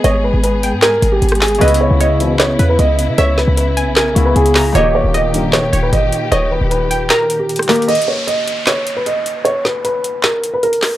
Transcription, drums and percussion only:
0.04 closed hi-hat
0.44 closed hi-hat
0.63 closed hi-hat
0.82 snare, clap, closed hi-hat
1.02 closed hi-hat
1.22 closed hi-hat
1.29 cross-stick, closed hi-hat
1.35 closed hi-hat
1.41 snare, clap, closed hi-hat, open hi-hat
1.48 closed hi-hat
1.55 closed hi-hat
1.61 closed hi-hat
1.68 closed hi-hat
1.74 closed hi-hat
2.01 closed hi-hat
2.20 closed hi-hat
2.39 snare, clap, closed hi-hat
2.59 closed hi-hat
2.79 closed hi-hat
2.99 closed hi-hat
3.18 closed hi-hat
3.38 snare
3.57 closed hi-hat
3.77 closed hi-hat
3.96 snare, clap, closed hi-hat
4.16 closed hi-hat
4.36 closed hi-hat
4.46 closed hi-hat
4.55 snare, clap, open hi-hat
4.75 closed hi-hat
5.14 closed hi-hat
5.34 closed hi-hat
5.53 snare, clap, closed hi-hat
5.73 closed hi-hat
5.93 closed hi-hat
6.12 closed hi-hat
6.32 closed hi-hat
6.71 closed hi-hat
6.91 closed hi-hat
7.10 snare, clap, closed hi-hat
7.30 closed hi-hat
7.49 closed hi-hat
7.56 cross-stick, closed hi-hat
7.63 closed hi-hat
7.68 snare, clap, closed hi-hat, open hi-hat
7.76 closed hi-hat
7.82 closed hi-hat
7.89 closed hi-hat
7.95 closed hi-hat
8.02 closed hi-hat
8.28 closed hi-hat
8.48 closed hi-hat
8.66 snare, clap, closed hi-hat
8.87 closed hi-hat
9.06 closed hi-hat
9.26 closed hi-hat
9.45 closed hi-hat
9.65 snare
9.85 closed hi-hat
10.04 closed hi-hat
10.23 snare, clap, closed hi-hat
10.44 closed hi-hat
10.63 closed hi-hat
10.73 closed hi-hat
10.82 snare, clap, open hi-hat

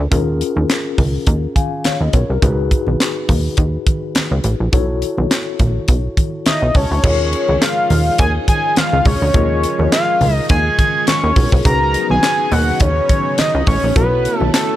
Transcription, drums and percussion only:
0.12 kick, closed hi-hat, muted conga, low conga
0.41 closed hi-hat
0.56 high conga
0.70 snare, clap, closed hi-hat
0.98 kick, open hi-hat, muted conga, high conga, low conga
1.27 kick, closed hi-hat
1.56 kick, closed hi-hat, muted conga, high conga
1.84 snare, clap, closed hi-hat, muted conga, high conga
2.13 kick, closed hi-hat
2.42 kick, closed hi-hat, muted conga, low conga
2.71 kick, closed hi-hat, muted conga
2.87 high conga
3.00 snare, clap, closed hi-hat
3.29 kick, open hi-hat, muted conga, high conga, low conga
3.57 kick, closed hi-hat
3.87 kick, closed hi-hat, high conga
4.15 snare, clap, closed hi-hat, muted conga, high conga
4.44 closed hi-hat, muted conga
4.73 kick, closed hi-hat, muted conga, low conga
5.02 closed hi-hat, muted conga
5.18 high conga
5.30 snare, clap, closed hi-hat, muted conga
5.59 kick, closed hi-hat, high conga, low conga
5.88 kick, closed hi-hat
6.17 kick, closed hi-hat, high conga
6.46 snare, clap, closed hi-hat, muted conga, high conga
6.74 kick, open hi-hat, muted conga, low conga
7.04 kick, crash, low conga
7.33 closed hi-hat
7.48 high conga
7.62 snare, clap, closed hi-hat
7.90 open hi-hat, muted conga, high conga, low conga
8.18 kick, closed hi-hat
8.48 kick, closed hi-hat, high conga
8.76 snare, clap, closed hi-hat, muted conga, high conga
9.05 kick, open hi-hat, low conga
9.34 kick, closed hi-hat, low conga
9.63 closed hi-hat, muted conga
9.79 high conga
9.92 snare, clap, closed hi-hat
10.21 open hi-hat, high conga, low conga
10.49 kick, closed hi-hat, muted conga
10.79 kick, closed hi-hat, muted conga, high conga
11.07 snare, clap, closed hi-hat, high conga
11.36 kick, open hi-hat, muted conga, low conga
11.52 kick
11.65 kick, closed hi-hat, low conga
11.94 closed hi-hat
12.10 high conga
12.23 snare, clap, closed hi-hat
12.52 open hi-hat, muted conga, high conga, low conga
12.80 kick, closed hi-hat
13.09 kick, closed hi-hat, high conga
13.38 snare, clap, closed hi-hat, muted conga, high conga
13.67 kick, open hi-hat, low conga
13.96 kick, closed hi-hat, muted conga, low conga
14.25 closed hi-hat
14.40 high conga
14.54 snare, clap, closed hi-hat

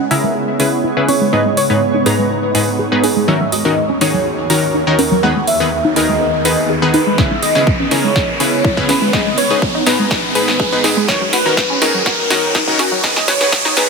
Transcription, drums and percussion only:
0.11 open hi-hat
0.60 open hi-hat
1.08 open hi-hat
1.57 open hi-hat
2.06 open hi-hat
2.55 open hi-hat
3.04 open hi-hat
3.52 open hi-hat
4.01 open hi-hat
4.50 open hi-hat
4.99 open hi-hat
5.47 open hi-hat
5.96 open hi-hat
6.45 open hi-hat
6.94 open hi-hat
7.18 kick, snare
7.43 open hi-hat
7.55 snare
7.67 kick
7.91 snare, open hi-hat
8.16 kick, snare
8.40 open hi-hat
8.65 kick
8.77 kick
8.89 snare, open hi-hat
9.13 kick, snare
9.38 open hi-hat
9.62 kick
9.86 snare, open hi-hat
10.11 kick, snare
10.35 open hi-hat
10.48 snare
10.60 kick
10.84 snare, open hi-hat
11.08 kick, snare
11.33 snare, open hi-hat
11.57 kick, snare
11.82 snare, open hi-hat
12.06 kick, snare
12.30 snare, open hi-hat
12.55 kick, snare
12.68 kick
12.79 snare, open hi-hat
13.04 kick, snare
13.16 snare
13.28 kick, snare, open hi-hat
13.41 snare
13.52 kick, snare
13.65 snare
13.77 snare, open hi-hat

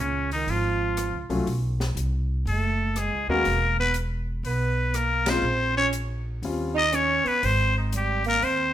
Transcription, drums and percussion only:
0.32 open hi-hat
0.48 open hi-hat
0.97 cross-stick, closed hi-hat
1.30 open hi-hat
1.47 open hi-hat
1.80 snare
1.97 closed hi-hat
2.47 open hi-hat
2.96 cross-stick, closed hi-hat
3.45 open hi-hat
3.94 closed hi-hat
4.45 open hi-hat
4.94 cross-stick, closed hi-hat
5.26 snare, ride
5.93 closed hi-hat
6.43 open hi-hat
6.93 cross-stick, closed hi-hat
7.26 open hi-hat
7.43 open hi-hat
7.93 closed hi-hat
8.24 open hi-hat
8.42 open hi-hat

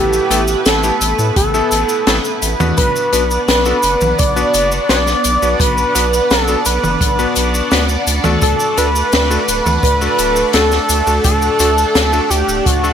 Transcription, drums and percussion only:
0.13 cabasa
0.31 closed hi-hat, cabasa
0.48 cabasa
0.66 snare, closed hi-hat, cabasa
0.83 cabasa
1.01 closed hi-hat, cabasa
1.19 cabasa
1.36 kick, closed hi-hat, cabasa
1.54 cabasa
1.72 closed hi-hat, cabasa
1.89 cabasa
2.07 snare, closed hi-hat, cabasa
2.25 cabasa
2.42 closed hi-hat, cabasa
2.60 mid tom, cabasa
2.78 kick, closed hi-hat, cabasa
2.96 cabasa
3.13 closed hi-hat, cabasa
3.31 cabasa
3.49 snare, closed hi-hat, cabasa
3.65 cabasa
3.83 closed hi-hat, cabasa
4.01 mid tom, cabasa
4.19 kick, closed hi-hat, cabasa
4.37 cabasa
4.54 closed hi-hat, cabasa
4.72 cabasa
4.89 snare, closed hi-hat, cabasa
5.07 snare, cabasa
5.24 closed hi-hat, cabasa
5.43 cabasa
5.60 kick, closed hi-hat, cabasa
5.78 cabasa
5.96 closed hi-hat, cabasa
6.13 cabasa
6.31 snare, closed hi-hat, cabasa
6.48 cabasa
6.66 closed hi-hat, cabasa
6.84 mid tom, cabasa
7.01 kick, closed hi-hat, cabasa
7.19 cabasa
7.36 closed hi-hat, cabasa
7.54 cabasa
7.71 snare, closed hi-hat, cabasa
7.89 cabasa
8.07 closed hi-hat, cabasa
8.24 mid tom, cabasa
8.42 kick, closed hi-hat, cabasa
8.60 cabasa
8.78 closed hi-hat, cabasa
8.96 cabasa
9.13 snare, closed hi-hat, cabasa
9.31 cabasa
9.48 closed hi-hat, cabasa
9.66 mid tom, cabasa
9.83 kick, closed hi-hat, cabasa
10.02 cabasa
10.19 closed hi-hat, cabasa
10.36 cabasa
10.53 snare, closed hi-hat, cabasa
10.72 snare, cabasa
10.89 closed hi-hat, cabasa
11.07 cabasa
11.24 kick, closed hi-hat, cabasa
11.42 cabasa
11.60 closed hi-hat, cabasa
11.78 cabasa
11.95 snare, closed hi-hat, cabasa
12.13 cabasa
12.31 closed hi-hat, cabasa
12.49 cabasa
12.66 kick, closed hi-hat, cabasa
12.84 cabasa

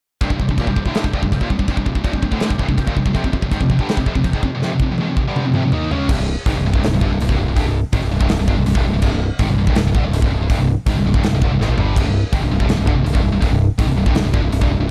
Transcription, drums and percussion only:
0.21 kick, china
0.30 kick
0.40 kick
0.49 kick
0.58 kick, china
0.67 kick
0.76 kick
0.86 kick
0.95 snare, china
1.04 kick
1.13 kick
1.23 kick
1.32 kick, china
1.41 kick
1.50 kick
1.59 kick
1.68 kick, china
1.77 kick
1.86 kick
1.95 kick
2.04 kick, china
2.13 kick
2.23 kick
2.32 kick
2.40 snare, china
2.50 kick
2.59 kick
2.69 kick
2.78 kick, china
2.87 kick
2.97 kick
3.06 kick
3.15 kick, china
3.24 kick
3.33 kick
3.42 kick
3.52 kick, china
3.61 kick
3.70 kick
3.79 kick
3.89 snare, china
3.97 kick
4.06 kick
4.15 kick
4.24 kick, china
4.33 kick
4.43 kick
4.62 snare
4.80 kick
4.98 high tom
5.17 kick
5.36 mid tom
5.54 mid tom
5.72 floor tom
5.91 floor tom
6.09 kick, crash
6.46 kick, open hi-hat
6.74 kick
6.84 snare, open hi-hat
7.01 kick
7.20 open hi-hat
7.29 kick
7.57 kick, open hi-hat
7.93 kick, open hi-hat
8.21 kick
8.29 snare, open hi-hat
8.48 kick
8.66 open hi-hat
8.75 kick
9.02 kick, crash
9.39 kick, open hi-hat
9.67 kick
9.75 snare, open hi-hat
9.95 kick
10.13 open hi-hat
10.22 kick
10.50 kick, open hi-hat
10.87 kick, open hi-hat
11.14 kick
11.24 snare, open hi-hat
11.42 kick
11.61 snare
11.78 floor tom
11.96 kick, crash, splash
12.33 kick, open hi-hat
12.60 kick
12.69 snare, open hi-hat
12.87 kick
13.06 open hi-hat
13.15 kick
13.42 kick, open hi-hat
13.79 kick, open hi-hat
14.06 kick
14.15 snare, open hi-hat
14.34 kick
14.52 open hi-hat
14.62 kick

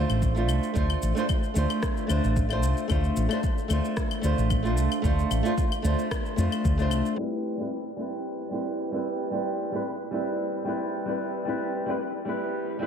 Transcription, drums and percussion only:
0.10 claves, shaker
0.22 kick, shaker
0.37 shaker
0.49 claves, shaker
0.63 shaker
0.76 kick, shaker
0.90 claves, shaker
1.02 shaker
1.17 shaker
1.29 kick, claves, shaker
1.44 shaker
1.56 shaker
1.70 claves, shaker
1.83 kick, cross-stick, shaker
1.97 shaker
2.09 claves, shaker
2.24 shaker
2.36 kick, shaker
2.50 claves, shaker
2.63 shaker
2.77 shaker
2.90 kick, claves, shaker
3.04 shaker
3.16 shaker
3.31 claves, shaker
3.43 kick, shaker
3.58 shaker
3.70 claves, shaker
3.85 shaker
3.97 kick, cross-stick, shaker
4.11 claves, shaker
4.24 shaker
4.38 shaker
4.50 kick, claves, shaker
4.65 shaker
4.77 shaker
4.92 claves, shaker
5.04 kick, shaker
5.19 shaker
5.31 claves, shaker
5.45 shaker
5.58 kick, shaker
5.72 claves, shaker
5.84 shaker
5.99 shaker
6.11 kick, cross-stick, claves, shaker
6.26 shaker
6.38 shaker
6.52 claves, shaker
6.65 kick, shaker
6.79 shaker
6.91 claves, shaker
7.06 shaker
7.72 shaker
9.60 shaker
10.40 shaker
11.74 shaker
12.01 shaker
12.15 shaker
12.27 shaker
12.54 shaker
12.69 shaker
12.81 shaker

